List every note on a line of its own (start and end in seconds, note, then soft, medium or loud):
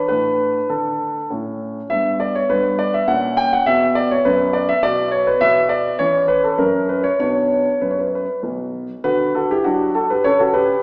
0.08 0.58 A2 soft
0.08 1.27 D4 soft
0.08 0.69 B4 medium
0.69 1.18 D3 soft
0.69 1.30 A4 medium
1.30 1.79 A2 soft
1.30 1.87 C#4 soft
1.90 2.38 G2 soft
1.90 3.05 B3 soft
1.90 2.15 E5 medium
2.20 2.35 D5 medium
2.35 2.50 C#5 medium
2.50 2.97 G2 soft
2.50 2.75 B4 medium
2.79 2.94 D5 medium
2.94 3.09 E5 medium
3.08 3.55 A#2 medium
3.08 3.63 C#4 soft
3.08 3.38 F#5 medium
3.37 3.52 G5 medium
3.53 3.67 F#5 medium
3.66 4.13 B2 soft
3.66 4.78 B3 soft
3.66 3.95 E5 medium
3.95 4.10 D5 medium
4.11 4.25 C#5 medium
4.25 4.71 F#2 medium
4.25 4.54 B4 medium
4.53 4.68 D5 medium
4.69 4.83 E5 medium
4.83 5.29 B2 medium
4.83 5.37 B3 soft
4.83 5.07 D5 medium
5.11 5.26 C#5 medium
5.27 5.41 B4 medium
5.41 5.88 B2 soft
5.41 5.95 B3 soft
5.41 5.70 E5 medium
5.69 5.94 D5 medium
5.99 6.47 E3 medium
5.99 6.55 C#4 soft
5.99 6.28 C#5 medium
6.28 6.43 B4 medium
6.44 6.59 A4 medium
6.58 7.07 F#2 soft
6.58 7.15 C#4 soft
6.58 6.84 A#4 medium
6.89 7.04 B4 medium
7.03 7.18 C#5 medium
7.20 7.63 B2 soft
7.20 7.69 B3 soft
7.20 7.69 D4 soft
7.20 7.81 C#5 medium
7.81 8.24 F#2 soft
7.81 7.90 B4 soft
7.91 7.98 C#5 soft
7.99 8.07 B4 soft
8.07 8.15 C#5 soft
8.15 8.39 B4 soft
8.43 8.86 B1 soft
9.04 9.52 D3 soft
9.04 9.33 F#4 medium
9.04 9.30 B4 medium
9.35 9.49 F#4 soft
9.35 9.50 A4 medium
9.51 9.65 E4 medium
9.51 9.65 G4 medium
9.64 10.12 F#3 soft
9.64 9.93 D4 soft
9.64 9.90 F#4 medium
9.95 10.09 F#4 soft
9.95 10.09 A4 medium
10.10 10.24 G4 soft
10.10 10.25 B4 medium
10.24 10.72 C#3 soft
10.24 10.38 A4 medium
10.24 10.39 C#5 medium
10.39 10.53 F#4 medium
10.39 10.54 A4 medium
10.54 10.82 G4 medium
10.54 10.79 B4 medium